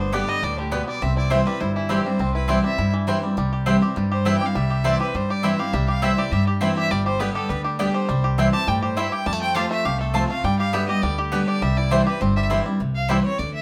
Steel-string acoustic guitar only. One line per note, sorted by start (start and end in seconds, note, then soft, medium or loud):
0.00 0.40 G2 medium
0.12 0.41 D3 medium
0.12 0.41 G3 medium
0.12 0.42 B3 medium
0.12 0.42 G4 medium
0.43 0.71 A2 medium
0.72 1.00 B2 medium
1.02 1.58 C3 medium
1.31 1.45 E3 medium
1.31 1.46 G3 medium
1.31 1.46 C4 medium
1.31 1.44 E4 medium
1.45 1.61 C4 soft
1.45 1.60 E4 medium
1.61 2.17 G2 medium
1.89 2.04 E3 medium
1.89 2.05 G3 medium
1.89 2.05 C4 medium
1.89 2.03 E4 medium
2.04 2.20 C4 medium
2.04 2.19 E4 medium
2.19 2.75 C3 medium
2.48 2.63 E3 medium
2.48 2.63 G3 medium
2.48 2.64 C4 medium
2.48 2.62 E4 medium
2.63 2.79 C4 soft
2.63 2.78 E4 medium
2.78 3.34 G2 medium
3.07 3.22 E3 medium
3.07 3.22 G3 medium
3.07 3.23 C4 medium
3.07 3.21 E4 loud
3.22 3.37 C4 soft
3.22 3.36 E4 medium
3.37 3.93 C3 medium
3.66 3.81 E3 medium
3.66 3.81 G3 medium
3.66 3.82 C4 medium
3.66 3.80 E4 medium
3.81 3.96 C4 medium
3.81 3.95 E4 medium
3.96 4.52 G2 medium
4.25 4.40 E3 medium
4.25 4.40 G3 medium
4.25 4.41 C4 medium
4.25 4.39 E4 medium
4.40 4.56 C4 soft
4.40 4.54 E4 medium
4.55 5.11 C3 medium
4.84 4.99 E3 medium
4.84 4.99 G3 medium
4.84 4.99 C4 medium
4.84 4.98 E4 loud
4.99 5.15 C4 medium
4.99 5.13 E4 medium
5.14 5.70 G2 medium
5.44 5.58 E3 medium
5.44 5.58 G3 medium
5.44 5.59 C4 medium
5.44 5.57 E4 loud
5.58 5.73 C4 soft
5.58 5.72 E4 medium
5.73 6.29 C3 medium
6.02 6.17 E3 medium
6.02 6.17 G3 medium
6.02 6.17 C4 medium
6.02 6.16 E4 medium
6.17 6.32 C4 medium
6.17 6.31 E4 medium
6.32 6.88 G2 medium
6.61 6.89 E3 medium
6.61 6.90 G3 medium
6.61 6.90 C4 loud
6.61 6.90 E4 loud
6.91 7.47 G2 medium
7.20 7.48 D3 medium
7.20 7.49 G3 medium
7.20 7.49 B3 medium
7.20 7.49 G4 medium
7.50 7.78 D3 medium
7.79 8.07 D3 medium
7.79 8.07 G3 medium
7.79 8.08 B3 medium
7.79 8.08 G4 medium
8.09 8.65 C3 medium
8.38 8.52 E3 medium
8.38 8.53 G3 medium
8.38 8.53 C4 loud
8.38 8.52 E4 medium
8.53 8.68 C4 soft
8.53 8.67 E4 medium
8.67 8.95 A2 medium
8.97 9.25 G2 medium
9.26 9.82 F2 medium
9.55 9.83 F3 medium
9.55 9.84 A3 medium
9.55 9.84 C4 medium
9.55 9.84 F4 medium
9.85 10.41 C3 medium
10.14 10.29 F3 medium
10.14 10.29 A3 medium
10.14 10.29 C4 loud
10.14 10.28 F4 medium
10.29 10.44 C4 medium
10.29 10.43 F4 medium
10.44 11.00 G2 medium
10.73 10.88 D3 medium
10.73 10.88 G3 medium
10.73 10.88 B3 medium
10.73 10.87 G4 medium
10.88 11.03 B3 soft
10.88 11.02 G4 medium
11.03 11.31 D3 medium
11.32 11.60 D3 medium
11.32 11.61 G3 medium
11.32 11.61 B3 medium
11.32 11.61 G4 loud
11.62 12.18 C3 medium
11.91 12.06 E3 medium
11.91 12.06 G3 medium
11.91 12.06 C4 medium
11.91 12.05 E4 medium
12.06 12.21 C4 medium
12.06 12.20 E4 medium
12.21 12.77 G2 loud
12.50 12.65 E3 medium
12.50 12.65 G3 medium
12.50 12.66 C4 medium
12.50 12.64 E4 loud
12.66 12.80 C4 medium
12.66 12.79 E4 medium
12.80 13.36 C3 medium
13.09 13.24 E3 medium
13.09 13.24 G3 medium
13.09 13.25 C4 medium
13.09 13.23 E4 medium
13.24 13.39 C4 medium
13.24 13.38 E4 medium
13.39 13.62 D3 medium